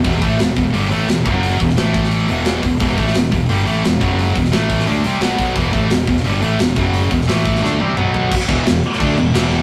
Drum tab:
CC |----------------|----------------|----------------|----------------|
HH |o-o-o-o-o-o-o-o-|o-o-o-o-o-o-o-o-|o-o-o-o-o-o-o-o-|o-o-o-o-o-o-o-o-|
SD |----o-------o---|---oo--o----o---|---oo-------o---|---oo--o----o---|
T1 |----------------|----------------|----------------|----------------|
T2 |----------------|----------------|----------------|----------------|
FT |----------------|----------------|----------------|----------------|
BD |o-o---o-------o-|--o---o-------o-|o-o---o-------o-|--o---o-------o-|

CC |----------------|----------------|x-x-x-x-x-x-x-x-|
HH |o-o-o-o-o-o-o-o-|o-o-o-o---------|----------------|
SD |----o--o----o---|---oo--oo-------|----o--o----o---|
T1 |----------------|----------o-----|----------------|
T2 |----------------|------------o---|----------------|
FT |----------------|--------------o-|----------------|
BD |o-o---o-------o-|--o---o---------|o-o-----o-------|